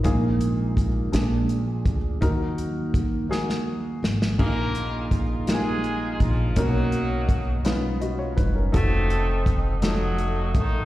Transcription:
<<
  \new Staff \with { instrumentName = "Tonewheel organ" } { \time 6/8 \key bes \phrygian \tempo 4. = 55 <f' bes'>4. <f' aes'>4. | ges'4 r2 | <aes' ees'' f'' bes''>2. | cis''2. |
<a' f'' ges'' ees'''>2. | }
  \new Staff \with { instrumentName = "Tonewheel organ" } { \clef bass \time 6/8 \key bes \phrygian <f aes ees'>4. <f aes d'>8 r4 | <ges bes ees'>8 r2 r8 | r2. | r2. |
r2. | }
  \new Staff \with { instrumentName = "Grand piano" } { \time 6/8 \key bes \phrygian << { bes,4. bes,4. | ees4. r4. | bes,4. r4. | b,4. r8 <fis' dis''>16 <f' cis''>16 <dis' b'>16 <cis' ais'>16~ |
<cis' ais'>16 r2 r8. | } \\ { <bes ees' f' aes'>4 r8 <bes d' f' aes'>4 r8 | <bes ees' ges' bes'>4 r8 <bes ees' ges' aes'>4 r8 | <bes d' ees' f' aes'>4 r8 <bes ees' f' g' aes'>4 r8 | <ais cis' dis' ais'>4 r8 <b cis' dis' f'>4 r8 |
<ees' f' ges' a'>4 r8 <f ees' ges' a'>4 r8 | } >> }
  \new Staff \with { instrumentName = "Horn section" } { \time 6/8 \key bes \phrygian << { r2. | r2. | <bes bes'>4 r8 <aes aes'>4 <f f'>8 | <fis fis'>4. r4. |
<a a'>4 r8 <ges ges'>4 <ees ees'>8 | } \\ { r2. | r2. | <ees' f'>4. <ees' f'>4. | <ais dis'>4. r4. |
<c' ees'>4. <a ees'>4. | } >> }
  \new Staff \with { instrumentName = "Upright bass" } { \clef bass \time 6/8 \key bes \phrygian bes,,4. bes,,4 d,8 | ees,2~ ees,8 aes,,8 | bes,,2~ bes,,8 bes,,8 | b,,2~ b,,8 fis,,8 |
f,,2~ f,,8 a,,8 | }
  \new DrumStaff \with { instrumentName = "Drums" } \drummode { \time 6/8 <hh bd>8 hh8 <hh bd>8 <hh sn>8 hh8 <hh bd>8 | <hh bd>8 hh8 <hh bd>8 sn16 sn8. sn16 sn16 | <cymc bd>8 hh8 <hh bd>8 <hh sn>8 hh8 <hh bd>8 | <hh bd>8 hh8 <hh bd>8 <hh sn>8 hh8 <hh bd>8 |
<hh bd>8 hh8 <hh bd>8 <hh sn>8 hh8 <hh bd>8 | }
>>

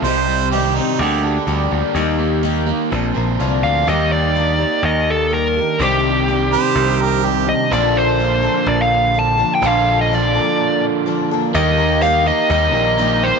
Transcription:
<<
  \new Staff \with { instrumentName = "Lead electric guitar" } { \time 4/4 \key ees \lydian \tempo 4 = 125 r1 | r2. r8 f''8 | ees''8 d''4. ees''8 a'8 bes'4 | g'2. r8 ees''8 |
d''8 c''4. d''16 f''8. a''8. g''16 | f''8. ees''16 d''4. r4. | ees''4 f''8 ees''8 ees''4. c''8 | }
  \new Staff \with { instrumentName = "Harmonica" } { \time 4/4 \key ees \lydian c''4 g'8 ees'8 g'8 r4. | r1 | r1 | r4. c''4 bes'8 g'8 r8 |
r1 | r1 | r1 | }
  \new Staff \with { instrumentName = "Tonewheel organ" } { \time 4/4 \key ees \lydian r1 | r1 | <bes ees' g'>1 | <c' d' g'>1 |
<bes d' f' a'>1~ | <bes d' f' a'>1 | <bes ees' g' bes'>1 | }
  \new Staff \with { instrumentName = "Twelve-string acoustic guitar" } { \time 4/4 \key ees \lydian <c g c' ees' g'>4 <c g c' ees' g'>8 <c' ees' g'>8 <g bes d' g'>8 <bes d' g'>8 <d g bes d' g'>4 | <ees g bes ees' g'>4 <ees g bes ees' g'>8 <bes ees' g'>8 <f c' d' bes'>8 <f c' d' bes'>8 <bes, d f c' d' bes'>4 | <ees g bes g'>4 <g bes d' g'>8 <bes g'>4. <g bes d' g'>8 <bes d' g'>8 | <c ees g c' d' g'>4 <g c' d' g'>8 <g c' d' g'>4. <g c' d' g'>8 <g c' d' g'>8 |
<bes, d f bes d' a'>4 <f bes d' a'>8 <f bes d' a'>4. <f bes d' a'>8 <f bes d' a'>8 | <bes, d f bes d' a'>4 <f bes d' a'>8 <f bes d' a'>4. <f bes d' a'>8 <f bes d' a'>8 | <ees g bes ees' bes'>8 <bes ees' bes'>8 <ees g bes ees' bes'>8 <bes ees' bes'>8 <g bes ees' bes'>8 <bes ees' bes'>8 <ees g bes ees' bes'>4 | }
  \new Staff \with { instrumentName = "Overdriven electric guitar" } { \time 4/4 \key ees \lydian c8 g8 ees8 g8 d8 d'8 g'8 bes8 | ees8 bes8 ees8 bes8 bes,8 c'8 f'8 bes8 | <ees bes ees' g'>1 | <c ees g c' g'>1 |
<bes, d bes d' f'>1 | <bes, d bes d' f'>1 | <ees bes ees' g'>4. <bes ees' g'>8 <ees bes ees' g'>8 <bes ees' g'>8 <ees bes ees' g'>8 <bes ees' g'>8 | }
  \new Staff \with { instrumentName = "Picked electric bass" } { \clef bass \time 4/4 \key ees \lydian c,2 d,4 d,8 d,16 r16 | ees,2 bes,,8 bes,,8 c,8 d,8 | ees,2 ees,2 | c,2 c,2 |
bes,,2 bes,,2 | bes,,2 r2 | ees,2 ees,8 bes,,4. | }
>>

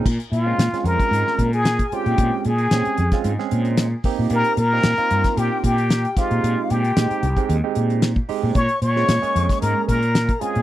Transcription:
<<
  \new Staff \with { instrumentName = "Flute" } { \time 4/4 \key bes \dorian \tempo 4 = 113 r8 f''4 bes''4~ bes''16 aes''8. g''8~ | g''8 aes''4. r2 | bes''8 bes''4. g''8 g''4 f''8~ | f''8 g''4. r2 |
des'''8 des'''4. bes''8 bes''4 aes''8 | }
  \new Staff \with { instrumentName = "Muted trumpet" } { \time 4/4 \key bes \dorian r8 f'4 bes'4~ bes'16 aes'8. g'8~ | g'8 aes'4. r2 | bes'8 bes'4. g'8 g'4 f'8~ | f'8 g'4. r2 |
des''8 des''4. bes'8 bes'4 aes'8 | }
  \new Staff \with { instrumentName = "Tine electric piano" } { \time 4/4 \key bes \dorian r8. <aes c' des' f'>16 r16 <aes c' des' f'>4. r8. <aes c' des' f'>8~ | <aes c' des' f'>8 r8 <aes c' des' g'>8 r16 <aes c' des' f'>16 r16 <aes c' des' aes'>4 r16 <bes c' ees' g'>8~ | <bes c' ees' g'>8 r16 <bes c' ees' g'>16 r16 <bes c' ees' f'>4. r8. <aes c' ees' g'>8~ | <aes c' ees' g'>8. r16 <aes c' ees' g'>8 r16 <aes c' ees' g'>16 r16 <aes c' ees' g'>4 r16 <aes c' ees' g'>8 |
r8. <aes c' des' f'>16 r16 <aes bes des' aes'>4. r8. <aes c' des' f'>8 | }
  \new Staff \with { instrumentName = "Fretless electric bass" } { \clef bass \time 4/4 \key bes \dorian bes,16 r16 bes,8 bes,16 r16 f,16 r16 aes,16 r16 bes,4 r16 bes,16 | bes,16 r16 bes,8 bes,16 r16 f,16 r16 aes,16 r16 bes,4 r16 bes,16 | bes,16 r16 bes,8 bes,16 r16 g,16 r16 bes,16 r16 bes,4 r16 bes,16 | bes,16 r16 bes,8 bes,16 r16 c,16 r16 ees,16 r16 bes,4 r16 bes,16 |
bes,16 r16 bes,8 bes,16 r16 f,16 r16 aes,16 r16 bes,4 r16 bes,16 | }
  \new DrumStaff \with { instrumentName = "Drums" } \drummode { \time 4/4 <cymc bd>16 hh16 hh8 <hh sn>16 <hh sn>16 hh16 <hh bd>16 hh16 sn16 <hh bd>16 hh16 <hh sn>16 <hh bd>16 hh16 hh16 | <hh bd>8 hh16 hh16 <hh sn>16 hh16 hh16 <hh bd sn>16 hh16 sn16 hh16 hh16 <hh sn>8 <hho bd>8 | hh16 hh16 hh8 <hh sn>16 hh16 hh16 <hh bd sn>16 hh8 <hh bd>16 hh16 <hh sn>16 hh16 <hh bd sn>16 hh16 | hh8 hh16 hh16 <hh sn>16 hh16 hh16 <hh bd>16 hh8 hh16 hh16 <hh sn>16 bd16 hho8 |
<hh bd>16 hh16 hh16 sn16 <hh sn>16 hh16 hh16 <hh bd sn>16 hh8 <hh bd>16 hh16 <hh sn>16 <hh bd>16 hh16 hh16 | }
>>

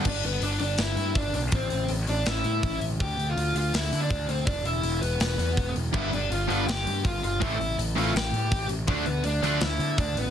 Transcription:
<<
  \new Staff \with { instrumentName = "Lead electric guitar" } { \time 4/4 \key a \minor \tempo 4 = 163 <d' d''>8 <b b'>8 <d' d''>8 <d' d''>8 <e' e''>4 <d' d''>8 <d' d''>8 | <c' c''>4 r8 <d' d''>8 <e' e''>4. r8 | <g' g''>8. <f' f''>8. <f' f''>8 <e' e''>8. <d' d''>8. <c' c''>8 | <d' d''>8 <e' e''>4 <b b'>2 r8 |
<e' e''>8 <d' d''>8 <f' f''>8 <f' f''>8 <g' g''>4 <f' f''>8 <f' f''>8 | <e' e''>4 r8 <f' f''>8 <g' g''>4. r8 | <d' d''>8 <b b'>8 <d' d''>8 <d' d''>8 <e' e''>4 <d' d''>8 <b b'>8 | }
  \new Staff \with { instrumentName = "Distorted electric guitar" } { \clef bass \time 4/4 \key a \minor r1 | r1 | r1 | r1 |
<g, d g b d'>8 r4 <g, d g b d'>8 r2 | <a, e a c' e'>8 r4 <a, e a c' e'>8 r2 | <d f a d'>8 r4 <d f a d'>8 r2 | }
  \new Staff \with { instrumentName = "Overdriven electric guitar" } { \clef bass \time 4/4 \key a \minor r1 | r1 | r1 | r1 |
<g, d g>8 r4 <g, d g>8 r2 | <a, e a>8 r4 <a, e a>8 r2 | <d a d'>8 r4 <d a d'>8 r2 | }
  \new Staff \with { instrumentName = "Picked electric bass" } { \clef bass \time 4/4 \key a \minor g,,8 g,,8 g,,8 g,,8 g,,8 g,8 g,,8 b,,8 | a,,8 a,,8 a,,8 a,,8 a,,8 a,8 a,,8 a,,8 | d,8 d,8 d,8 d,8 d,8 d8 d,8 d,8 | e,,8 e,,8 e,,8 e,,8 e,,8 e,8 e,,8 e,,8 |
g,,8 g,,8 g,,8 g,,8 g,,8 g,8 g,,8 g,,8 | a,,8 a,,8 a,,8 a,,8 a,,8 a,8 a,,8 a,,8 | d,8 d,8 d,8 d,8 d,8 d8 d,8 a,,8 | }
  \new DrumStaff \with { instrumentName = "Drums" } \drummode { \time 4/4 <cymc bd>8 hho8 hho8 hho8 <hho sn>8 hho8 <hho bd>8 hho8 | <hho bd>8 hho8 hho8 hho8 <hho sn>8 hho8 <hho bd>8 hho8 | <hho bd>8 hho8 hho8 hho8 <hho sn>8 hho8 <hho bd>8 hho8 | <hho bd>8 hho8 hho8 hho8 <hho sn>8 hho8 <hho bd>8 hho8 |
<cymc bd>8 hho8 hho8 hho8 <hho sn>8 hho8 <hho bd>8 hho8 | <hho bd>8 hho8 hho8 hho8 <hho sn>8 hho8 <hho bd>8 hho8 | <hho bd>8 hho8 hho8 hho8 <hho sn>8 hho8 <hho bd>8 hho8 | }
>>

